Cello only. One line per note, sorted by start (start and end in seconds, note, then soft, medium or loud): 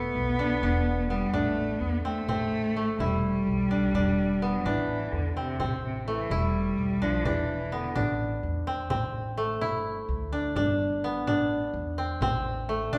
0.00 1.09 B3 loud
1.10 1.35 G3 medium
1.33 1.82 A3 medium
1.81 2.03 B3 medium
2.03 2.95 A3 loud
3.00 4.67 G3 medium
4.65 5.13 E3 medium
5.12 5.36 D3 medium
5.37 5.80 C3 medium
5.84 6.06 C3 medium
6.07 6.34 E3 medium
6.32 7.04 G3 medium
7.03 7.26 F3 medium
7.24 7.73 E3 medium
7.72 7.96 D3 medium